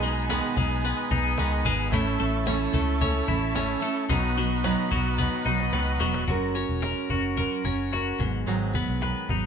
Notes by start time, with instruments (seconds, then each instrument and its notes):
Already playing: picked electric bass B1, clean electric guitar B2 B3 D#4, transistor combo organ D#4 G#4 B4
0.02 steel-string acoustic guitar G#3 B3 D#4
0.29 steel-string acoustic guitar B2 D#3 G#3 B3 D#4, cajon slap
0.56 picked electric bass B1, steel-string acoustic guitar G#3 B3 D#4, cajon bass
0.84 steel-string acoustic guitar D#3 G#3 B3 D#4
1.11 picked electric bass B1, steel-string acoustic guitar G#3 B3 D#4, cajon bass
1.38 picked electric bass C#2, steel-string acoustic guitar B2 D#3 G#3 B3 D#4, cajon slap
1.65 picked electric bass G#1, steel-string acoustic guitar G#3 B3 D#4, cajon bass
1.90 picked electric bass A1, steel-string acoustic guitar A2 E3 A3 C#4 E4, transistor combo organ E4 A4 C#5, cajon bass
2.19 picked electric bass A1, steel-string acoustic guitar A3 C#4 E4
2.46 steel-string acoustic guitar A2 E3 A3 C#4 E4, cajon slap
2.72 picked electric bass C#2, steel-string acoustic guitar A3 C#4 E4, cajon bass
3.00 steel-string acoustic guitar E3 A3 C#4 E4, cajon bass
3.27 picked electric bass A1, steel-string acoustic guitar A3 C#4 E4, cajon bass
3.55 steel-string acoustic guitar A2 E3 A3 C#4 E4, cajon slap
3.82 steel-string acoustic guitar A3 C#4 E4
4.09 picked electric bass B1, steel-string acoustic guitar B2 D#3 F#3 B3 D#4, transistor combo organ D#4 F#4 B4, cajon bass
4.37 steel-string acoustic guitar F#3 B3 D#4
4.64 steel-string acoustic guitar B2 D#3 F#3 B3 D#4, cajon slap
4.91 picked electric bass B1, steel-string acoustic guitar F#3 B3 D#4, cajon bass
5.18 steel-string acoustic guitar D#3 F#3 B3 D#4, cajon bass, cajon slap
5.45 picked electric bass B1, steel-string acoustic guitar F#3 B3 D#4, cajon slap
5.60 cajon slap
5.73 picked electric bass C#2, steel-string acoustic guitar B2 D#3 F#3 B3 D#4, cajon slap
6.00 picked electric bass E1, steel-string acoustic guitar F#3 B3 D#4, cajon slap
6.14 cajon slap
6.28 picked electric bass F#1, steel-string acoustic guitar F#3 G#3 C#4 F#4 A#4, cajon bass
6.55 steel-string acoustic guitar C#4 F#4 A#4, cajon slap
6.69 picked electric bass E1
6.82 steel-string acoustic guitar G#3 C#4 F#4 A#4, cajon slap
7.09 picked electric bass F#1, steel-string acoustic guitar C#4 F#4 A#4, cajon bass
7.36 steel-string acoustic guitar F#3 G#3 C#4 F#4 A#4, cajon bass, cajon slap
7.64 picked electric bass F#1, steel-string acoustic guitar C#4 F#4 A#4, cajon bass
7.92 steel-string acoustic guitar G#3 C#4 F#4 A#4, cajon slap
8.19 picked electric bass G#1, clean electric guitar G#2, steel-string acoustic guitar F#3 B3 F#4, cajon bass
8.46 picked electric bass G#1, steel-string acoustic guitar G#2 D#3 F#3 B3 F#4
8.74 steel-string acoustic guitar F#3 B3 F#4, cajon bass
8.89 picked electric bass B1
9.01 steel-string acoustic guitar D#3 F#3 B3 F#4, clean electric guitar B4, cajon slap
9.29 picked electric bass G#1, steel-string acoustic guitar F#3 B3 F#4, clean electric guitar D#4, cajon bass